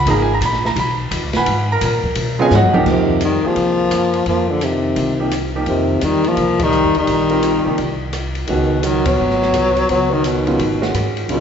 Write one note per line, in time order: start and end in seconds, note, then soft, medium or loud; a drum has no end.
0.06 0.40 G#1 medium
0.06 0.27 F3 medium
0.06 0.27 A#3 medium
0.06 0.27 D#4 medium
0.06 0.27 G#4 medium
0.06 ride medium
0.10 0.20 A#5 loud
0.22 0.32 G#5 medium
0.34 0.43 A#5 medium
0.41 0.75 A#1 loud
0.41 hi-hat pedal medium
0.41 ride medium
0.45 0.65 B5 loud
0.53 snare soft
0.65 0.77 A#5 medium
0.65 snare medium
0.76 1.10 B1 medium
0.76 0.92 B5 loud
0.76 ride medium
1.11 1.23 D#2 medium
1.11 hi-hat pedal medium
1.11 ride medium
1.23 1.34 C#2 medium
1.33 1.45 B1 medium
1.33 1.68 B4 medium
1.33 1.68 F#5 medium
1.33 1.68 G#5 medium
1.33 1.68 B5 loud
1.33 snare medium
1.33 ride medium
1.46 1.80 G#2 medium
1.46 ride medium
1.72 1.83 A#4 medium
1.72 1.83 A#5 loud
1.81 2.02 A#2 loud
1.81 hi-hat pedal medium
1.81 ride medium
1.85 2.37 A#4 medium
1.85 2.37 A#5 medium
2.04 muted upright bass stroke soft
2.04 kick medium
2.15 2.50 B2 medium
2.15 ride medium
2.39 2.50 C#3 medium
2.39 2.50 F#3 medium
2.39 2.51 B3 medium
2.39 2.50 F4 medium
2.39 2.52 G#4 medium
2.39 2.53 C#5 medium
2.39 2.52 D#5 medium
2.39 2.52 G#5 loud
2.51 2.63 G#2 loud
2.51 snare medium
2.51 hi-hat pedal medium
2.55 2.80 F#4 medium
2.55 2.80 C#5 medium
2.55 2.80 D#5 medium
2.55 2.80 F#5 loud
2.63 2.74 F#2 medium
2.63 mid tom medium
2.73 2.85 C#2 medium
2.73 3.19 F3 medium
2.73 3.19 A#3 medium
2.73 3.19 D#4 medium
2.73 3.19 G4 medium
2.73 mid tom loud
2.86 3.40 F2 medium
2.86 3.21 D#3 medium
2.86 kick medium
2.86 snare soft
2.86 crash medium
2.90 3.21 C3 medium
3.08 kick soft
3.21 3.48 D#3 medium
3.21 3.46 G3 medium
3.21 hi-hat pedal medium
3.21 ride medium
3.43 4.28 F3 loud
3.43 4.27 A#3 medium
3.43 3.89 C4 medium
3.43 3.89 F4 medium
3.43 3.89 G4 medium
3.43 3.89 G#4 medium
3.43 muted upright bass stroke soft
3.56 3.89 C2 medium
3.56 ride medium
3.91 4.24 F#2 medium
3.91 cross-stick medium
3.91 hi-hat pedal medium
3.91 ride medium
4.14 ride soft
4.26 4.93 F2 medium
4.26 4.53 F3 medium
4.26 4.50 A#3 medium
4.26 ride medium
4.48 4.65 D3 medium
4.48 4.63 F3 medium
4.61 5.33 C3 medium
4.61 5.32 D#3 medium
4.61 hi-hat pedal medium
4.61 ride medium
4.96 5.63 C2 medium
4.96 ride medium
5.20 5.31 F3 medium
5.20 5.31 A#3 medium
5.20 5.31 D#4 medium
5.20 5.31 G4 medium
5.31 cross-stick medium
5.31 hi-hat pedal medium
5.31 ride medium
5.55 6.00 F3 medium
5.55 6.01 A#3 medium
5.55 6.01 D#4 medium
5.55 6.01 G4 medium
5.66 6.00 F2 medium
5.66 6.06 C3 medium
5.66 6.05 D#3 medium
5.66 ride medium
6.01 6.35 E2 medium
6.01 6.29 D#3 medium
6.01 6.29 G3 medium
6.01 hi-hat pedal medium
6.01 ride medium
6.24 6.65 F3 loud
6.24 6.63 A#3 medium
6.24 ride soft
6.37 6.81 C2 medium
6.37 ride medium
6.59 6.97 D#3 loud
6.59 6.96 G3 medium
6.59 kick medium
6.59 ride medium
6.72 hi-hat pedal soft
6.84 6.95 F2 medium
6.95 7.07 D#2 medium
6.95 7.98 G3 medium
6.95 ride soft
6.99 7.98 D#3 medium
7.07 7.61 A#1 medium
7.07 ride medium
7.30 7.63 C4 medium
7.30 7.63 F4 medium
7.30 7.63 G4 medium
7.30 7.63 A#4 medium
7.30 ride soft
7.43 hi-hat pedal medium
7.43 ride medium
7.65 7.77 C2 medium
7.65 7.77 F3 medium
7.65 7.77 A#3 medium
7.65 7.77 D#4 medium
7.65 7.77 G4 medium
7.78 8.45 C2 medium
7.78 ride medium
8.13 cross-stick medium
8.13 hi-hat pedal medium
8.13 ride medium
8.35 ride soft
8.47 9.16 C#2 medium
8.47 8.86 B2 medium
8.47 8.85 D#3 medium
8.47 8.69 D#3 medium
8.47 8.69 G#3 soft
8.47 8.69 C#4 soft
8.47 8.69 F#4 medium
8.47 ride medium
8.83 9.08 D#3 medium
8.83 9.09 F#3 medium
8.83 hi-hat pedal medium
8.83 ride medium
9.06 9.89 F#3 medium
9.06 9.89 B3 medium
9.06 kick medium
9.06 ride medium
9.19 9.52 G#1 medium
9.30 snare soft
9.42 snare soft
9.53 9.86 C2 medium
9.53 cross-stick medium
9.53 hi-hat pedal medium
9.53 ride medium
9.76 ride soft
9.89 10.56 C#2 medium
9.89 10.15 F#3 medium
9.89 10.13 B3 medium
9.89 ride medium
10.12 10.25 D#3 medium
10.12 10.24 F#3 medium
10.24 10.91 B2 medium
10.24 10.92 D#3 medium
10.24 hi-hat pedal medium
10.24 ride medium
10.47 10.58 C#3 medium
10.47 10.58 F#3 medium
10.47 10.58 B3 medium
10.47 10.58 F4 medium
10.47 ride soft
10.59 10.92 G#1 medium
10.59 ride medium
10.82 11.27 D#3 medium
10.82 11.27 G#3 medium
10.82 11.27 C#4 medium
10.82 11.27 F#4 medium
10.82 snare soft
10.94 11.27 G#2 medium
10.94 cross-stick medium
10.94 hi-hat pedal medium
10.94 ride medium
11.17 ride soft
11.29 11.40 C#2 medium
11.29 11.40 B2 medium
11.29 11.40 C#3 medium
11.29 11.40 D#3 medium
11.29 11.40 F#3 medium
11.29 11.40 B3 medium
11.29 11.40 F4 medium
11.29 ride medium